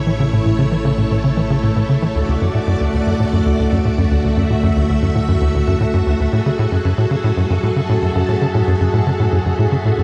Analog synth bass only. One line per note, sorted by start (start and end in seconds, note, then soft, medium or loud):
0.07 0.11 E3 medium
0.20 0.28 C#3 loud
0.33 0.41 A2 medium
0.46 0.54 A2 medium
0.59 0.67 C#3 medium
0.72 0.76 E3 medium
0.85 0.93 C#3 loud
0.98 1.06 A2 medium
1.11 1.19 A2 medium
1.24 1.32 C#3 medium
1.37 1.42 E3 medium
1.50 1.58 C#3 loud
1.63 1.71 A2 medium
1.76 1.84 A2 medium
1.89 1.97 C#3 medium
2.02 2.07 E3 medium
2.15 2.23 D2 medium
2.28 2.36 D2 medium
2.41 2.49 F#2 medium
2.54 2.59 A2 medium
2.67 2.75 F#2 loud
2.80 2.88 D2 medium
2.94 3.01 D2 medium
3.07 3.15 F#2 medium
3.20 3.24 A2 medium
3.33 3.41 F#2 loud
3.46 3.54 D2 medium
3.59 3.67 D2 medium
3.72 3.80 F#2 medium
3.85 3.90 A2 medium
3.98 4.06 F#2 loud
4.11 4.19 D2 medium
4.24 4.32 D2 medium
4.37 4.45 F#2 medium
4.50 4.55 A2 medium
4.63 4.71 F#2 loud
4.76 4.84 D2 medium
4.89 4.97 D2 medium
5.02 5.10 F#2 medium
5.15 5.20 A2 medium
5.28 5.36 F#2 loud
5.41 5.49 D2 medium
5.54 5.62 D2 medium
5.67 5.75 F#2 medium
5.80 5.85 A2 medium
5.94 6.01 F#2 loud
6.07 6.14 D2 medium
6.20 6.28 D2 medium
6.33 6.41 A2 medium
6.46 6.51 C#3 medium
6.59 6.67 A2 loud
6.72 6.80 F#2 medium
6.85 6.93 F#2 medium
6.98 7.06 A2 medium
7.11 7.16 C#3 medium
7.24 7.32 A2 loud
7.37 7.45 F#2 medium
7.50 7.58 F#2 medium
7.63 7.71 A2 medium
7.76 7.81 C#3 medium
7.89 7.97 A2 loud
8.02 8.10 F#2 medium
8.15 8.23 F#2 medium
8.29 8.36 A2 medium
8.41 8.46 C#3 medium
8.55 8.62 A2 loud
8.67 8.75 F#2 medium
8.81 8.88 F#2 medium
8.93 9.01 A2 medium
9.07 9.11 C#3 medium
9.20 9.28 A2 loud
9.32 9.40 F#2 medium
9.46 9.54 F#2 medium
9.59 9.67 A2 medium
9.72 9.77 C#3 medium
9.85 9.93 A2 loud
9.98 10.03 F#2 medium